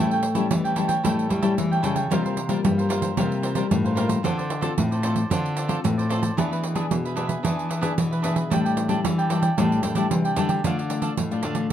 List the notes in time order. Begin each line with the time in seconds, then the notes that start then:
Already playing: A2
0.00 G3 A3 C#4 E4 C#5 G5
0.11 A4 C#5 G5, pandeiro
0.23 pandeiro
0.35 G3 C#4 E4 A4 C#5 G5, pandeiro
0.51 E3, pandeiro
0.64 A4 C#5 G5, pandeiro
0.76 G3 C#4 E4 A4 C#5 G5, pandeiro
0.88 A4 C#5 G5, pandeiro
1.03 A2 G3 A3 C#4 E4 A4 C#5 G5, pandeiro
1.19 pandeiro
1.29 G3 E4 A4 C#5 G5, pandeiro
1.42 G3 C#4 E4 A4 C#5 G5, pandeiro
1.58 E3, pandeiro
1.71 A4 C#5 G5, pandeiro
1.82 C#3 G3 C#4 E4 A4 C#5 G5, pandeiro
1.95 A4 C#5 G5, pandeiro
2.10 C3 G3 A#3 F4 A#4 C5 F5, pandeiro
2.25 A#4 C5 F5, pandeiro
2.37 pandeiro
2.49 G3 A#3 F4 A#4 C5 F5, pandeiro
2.64 G2 G3, pandeiro
2.78 A#4 C5 F5, pandeiro
2.89 G3 A#3 F4 A#4 C5 F5, pandeiro
3.02 A#4 C5 F5, pandeiro
3.17 C3 G3 A#3 F4 A#4 C5 F5, pandeiro
3.32 pandeiro
3.42 F4 A#4 C5 F5, pandeiro
3.55 G3 A#3 F4 A#4 C5 F5, pandeiro
3.71 G2 A2, pandeiro
3.84 A#4 C5 F5, pandeiro
3.95 G3 A#3 F4 A#4 C5 F5, pandeiro
4.07 A#4 C5 F5, pandeiro
4.23 D3 C4 F4 A4 C5 D5, pandeiro
4.38 A4 C5 D5, pandeiro
4.50 pandeiro
4.61 C4 F4 A4 C5 D5, pandeiro
4.78 A2, pandeiro
4.91 A4 C5 D5, pandeiro
5.02 C4 F4 A4 C5 D5, pandeiro
5.15 A4 C5 D5, pandeiro
5.30 D3 C4 F4 A4 C5 D5, pandeiro
5.46 pandeiro
5.56 F4 A4 C5 D5, pandeiro
5.68 C4 F4 A4 C5 D5, pandeiro
5.84 A2, pandeiro
5.98 A4 C5 D5, pandeiro
6.09 C4 F4 A4 C5 D5, pandeiro
6.22 A4 C5 D5, pandeiro
6.37 E3 B3 D4 G#4 B4 E5, pandeiro
6.51 G#4 B4 E5, pandeiro
6.64 pandeiro
6.75 B3 D4 G#4 B4 E5, pandeiro
6.91 B2, pandeiro
7.05 G#4 B4 E5, pandeiro
7.16 B3 D4 G#4 B4 E5, pandeiro
7.27 G#4 B4 E5, pandeiro
7.43 E3 B3 D4 G#4 B4 E5, pandeiro
7.59 pandeiro
7.69 D4 G#4 B4 E5, pandeiro
7.81 B3 D4 G#4 B4 E5, pandeiro
7.98 B2 E3, pandeiro
8.11 G#4 B4 E5, pandeiro
8.22 B3 D4 G#4 B4 E5, pandeiro
8.35 G#4 B4 E5, pandeiro
8.50 A2 G3 D4 E4 A4 D5 G5, pandeiro
8.65 A4 D5 G5, pandeiro
8.77 pandeiro
8.88 G3 D4 E4 A4 D5 G5, pandeiro
9.05 E3, pandeiro
9.18 A4 D5 G5, pandeiro
9.29 G3 D4 E4 A4 D5 G5, pandeiro
9.42 A4 D5 G5, pandeiro
9.57 A2 G3 D4 E4 A4 D5 G5, pandeiro
9.72 pandeiro
9.82 A2 D4 A4 D5 G5, pandeiro
9.95 G3 D4 E4 A4 D5 G5, pandeiro
10.11 C3 E3, pandeiro
10.24 A4 D5 G5, pandeiro
10.36 D3 G3 D4 E4 A4 D5 G5, pandeiro
10.48 A4 D5 G5, pandeiro
10.64 D3 A3 D4 F4 A4 D5 F5, pandeiro
10.78 A4 D5 F5, pandeiro
10.89 A3 D4 F4, pandeiro
11.02 D4 A4 D5 F5, pandeiro
11.17 A2, pandeiro
11.31 A3 D4 F4 A4 D5 F5, pandeiro
11.42 D3 D4 A4 D5 F5, pandeiro
11.55 A4 D5 F5, pandeiro